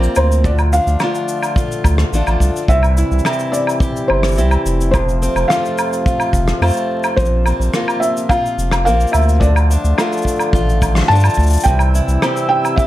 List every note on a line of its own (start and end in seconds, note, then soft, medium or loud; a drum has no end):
0.00 0.45 A#2 medium
0.00 0.41 C3 medium
0.00 2.65 F3 medium
0.00 0.43 A#3 medium
0.00 0.51 A#3 medium
0.00 0.51 C4 medium
0.00 1.03 F4 medium
0.00 2.65 F4 medium
0.00 0.19 D5 medium
0.00 cabasa soft
0.16 0.80 D2 medium
0.16 0.46 C5 medium
0.16 cabasa medium
0.16 low woodblock medium
0.32 cabasa medium
0.44 2.67 D3 medium
0.44 2.69 D3 medium
0.44 2.67 A3 medium
0.44 0.51 D5 loud
0.44 kick loud
0.44 cabasa medium
0.59 cabasa soft
0.59 low woodblock medium
0.73 1.01 D4 medium
0.73 1.81 F5 medium
0.73 cabasa medium
0.87 0.97 D2 medium
0.87 cabasa soft
1.00 2.12 A3 medium
1.00 2.13 D4 medium
1.00 1.56 F4 medium
1.00 cross-stick medium
1.00 cabasa medium
1.00 low woodblock medium
1.15 cabasa soft
1.29 cabasa medium
1.43 cabasa medium
1.43 low woodblock medium
1.56 2.13 F4 medium
1.56 kick loud
1.56 cabasa medium
1.72 cabasa soft
1.84 2.04 D2 medium
1.84 kick loud
1.84 cabasa medium
1.84 low woodblock medium
1.98 cross-stick medium
1.98 cabasa soft
2.13 2.23 A1 medium
2.13 2.75 A3 medium
2.13 2.75 D4 medium
2.13 2.76 F4 medium
2.13 cabasa medium
2.27 2.37 A1 medium
2.27 cabasa soft
2.27 low woodblock medium
2.40 2.51 C2 medium
2.40 kick medium
2.40 cabasa medium
2.56 cabasa soft
2.68 3.04 C2 loud
2.68 4.94 C3 medium
2.68 9.38 C3 medium
2.68 4.92 E3 medium
2.68 4.92 G3 medium
2.68 4.92 E4 medium
2.68 3.56 E5 loud
2.68 kick loud
2.68 cabasa medium
2.83 cabasa soft
2.83 low woodblock medium
2.97 3.25 E4 medium
2.97 cabasa medium
3.11 3.21 C2 medium
3.11 cabasa soft
3.19 cabasa soft
3.25 4.37 C4 medium
3.25 4.37 E4 medium
3.25 3.80 G4 medium
3.25 cross-stick medium
3.25 cabasa soft
3.25 low woodblock medium
3.33 cabasa soft
3.39 cabasa soft
3.52 4.10 D5 medium
3.52 cabasa medium
3.67 cabasa soft
3.67 low woodblock medium
3.80 4.37 G4 medium
3.80 kick loud
3.80 cabasa medium
3.96 cabasa soft
4.08 4.39 G1 medium
4.08 4.90 C5 medium
4.08 low woodblock medium
4.23 cross-stick medium
4.23 cabasa soft
4.28 cabasa soft
4.32 cabasa soft
4.35 4.57 C2 medium
4.35 5.22 C4 medium
4.35 4.99 E4 medium
4.35 cabasa soft
4.38 5.00 G4 medium
4.38 cabasa medium
4.51 cabasa soft
4.51 low woodblock medium
4.65 5.29 F1 medium
4.65 cabasa medium
4.81 cabasa medium
4.91 7.18 F2 medium
4.91 11.63 F3 medium
4.91 7.16 A3 medium
4.91 9.39 F4 medium
4.91 5.44 C5 medium
4.91 kick loud
4.91 cabasa medium
4.91 low woodblock medium
5.09 cabasa soft
5.22 5.50 C4 medium
5.22 cabasa medium
5.35 5.45 F1 medium
5.35 cabasa soft
5.35 low woodblock medium
5.48 6.61 A3 medium
5.48 6.62 C4 medium
5.48 6.06 F4 medium
5.48 6.85 F5 loud
5.48 cross-stick medium
5.48 cabasa medium
5.65 cabasa soft
5.78 cabasa medium
5.78 low woodblock medium
5.93 cabasa medium
6.06 6.63 F4 medium
6.06 kick loud
6.06 cabasa medium
6.20 cabasa soft
6.20 low woodblock medium
6.33 6.53 F1 medium
6.33 kick medium
6.33 cabasa medium
6.48 cross-stick medium
6.48 cabasa medium
6.61 6.71 F2 medium
6.61 7.23 A3 medium
6.61 7.46 C4 medium
6.61 7.75 F4 medium
6.61 cabasa soft
6.61 low woodblock medium
6.64 cabasa soft
6.67 cabasa soft
6.69 cabasa soft
6.71 cabasa soft
6.73 cabasa medium
6.77 cabasa soft
7.04 cabasa soft
7.04 low woodblock medium
7.16 7.53 A#1 loud
7.16 9.41 A#2 medium
7.16 9.41 A#3 medium
7.16 8.04 C5 medium
7.16 kick loud
7.16 cabasa medium
7.25 cabasa soft
7.46 7.73 C4 medium
7.46 cabasa medium
7.46 low woodblock medium
7.59 7.69 A#1 medium
7.59 cabasa soft
7.74 8.85 A#3 medium
7.74 8.85 C4 medium
7.74 8.30 F4 medium
7.74 cross-stick medium
7.74 cabasa medium
7.88 cabasa soft
7.88 low woodblock medium
8.00 8.30 E5 medium
8.00 cabasa medium
8.17 cabasa medium
8.29 8.87 F4 medium
8.29 8.84 F5 loud
8.29 kick loud
8.29 cabasa medium
8.29 low woodblock medium
8.46 cabasa soft
8.58 8.88 F1 medium
8.58 cabasa medium
8.71 cross-stick medium
8.71 cabasa soft
8.71 low woodblock medium
8.85 9.06 A#1 medium
8.85 9.48 A#3 medium
8.85 9.48 C4 medium
8.85 10.00 F4 medium
8.85 9.14 F5 medium
8.85 cabasa medium
9.00 cabasa soft
9.07 cabasa soft
9.12 9.77 D2 medium
9.12 9.42 E5 medium
9.12 cabasa medium
9.12 low woodblock medium
9.22 cabasa soft
9.29 cabasa soft
9.40 11.66 D3 medium
9.40 11.64 D3 medium
9.40 11.64 A3 medium
9.40 11.65 F4 medium
9.40 11.14 D5 loud
9.40 kick loud
9.40 cabasa medium
9.56 cabasa soft
9.56 low woodblock medium
9.71 9.98 D4 medium
9.71 cabasa medium
9.84 9.94 D2 medium
9.84 cabasa soft
9.98 11.10 A3 medium
9.98 11.10 D4 medium
9.98 10.53 F4 medium
9.98 cross-stick medium
9.98 cabasa medium
9.98 low woodblock medium
10.12 cabasa soft
10.17 cabasa soft
10.22 kick medium
10.22 cabasa soft
10.27 cabasa soft
10.27 cabasa medium
10.31 cabasa soft
10.36 cabasa soft
10.36 low woodblock medium
10.40 cabasa soft
10.53 11.03 A1 medium
10.53 11.10 F4 medium
10.53 kick loud
10.53 cabasa medium
10.69 cabasa soft
10.82 kick medium
10.82 cabasa medium
10.82 low woodblock medium
10.95 cross-stick medium
10.95 cabasa soft
10.98 cross-stick medium
11.00 cross-stick soft
11.03 cross-stick soft
11.05 cross-stick soft
11.07 11.30 G2 medium
11.07 11.72 A3 medium
11.07 11.67 A5 loud
11.07 cross-stick soft
11.07 cabasa soft
11.11 11.72 D4 medium
11.11 11.73 F4 medium
11.11 cabasa soft
11.20 cabasa soft
11.20 low woodblock medium
11.24 cabasa soft
11.29 cabasa soft
11.34 11.58 D2 medium
11.34 kick soft
11.34 cabasa soft
11.39 cabasa soft
11.43 cabasa soft
11.47 cabasa soft
11.50 cabasa soft
11.53 cabasa soft
11.57 cabasa medium
11.60 12.47 G5 loud
11.60 cabasa medium
11.64 12.01 C2 loud
11.64 12.87 C3 medium
11.64 12.87 E3 medium
11.64 12.87 G3 medium
11.64 12.87 E4 medium
11.64 12.87 E6 medium
11.64 kick medium
11.64 cabasa medium
11.79 cabasa soft
11.79 low woodblock medium
11.95 12.23 E4 medium
11.95 cabasa medium
12.08 12.18 C2 medium
12.08 cabasa soft
12.22 12.87 C4 medium
12.22 12.87 E4 medium
12.22 12.78 G4 medium
12.22 cross-stick medium
12.22 cabasa medium
12.22 low woodblock medium
12.36 cabasa soft
12.49 12.76 G5 loud
12.65 cabasa medium
12.65 low woodblock medium
12.76 12.87 G4 medium
12.76 12.87 E5 medium
12.76 kick loud
12.76 cabasa medium